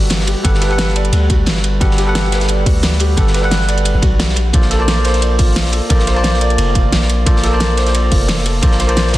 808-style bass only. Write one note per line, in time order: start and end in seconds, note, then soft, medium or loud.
0.00 0.35 G1 loud
0.44 1.11 G1 medium
1.12 1.45 D2 loud
1.47 1.80 G1 medium
1.81 2.65 G1 loud
2.66 3.16 D2 loud
3.17 3.93 G1 loud
3.95 4.02 G1 loud
4.03 4.38 B1 medium
4.37 4.52 A#1 loud
4.54 5.81 A#1 loud
5.90 6.57 A#1 loud
6.58 6.91 F1 medium
6.92 7.25 A#1 medium
7.26 8.10 A#1 loud
8.12 8.62 F1 medium
8.63 9.18 A#1 loud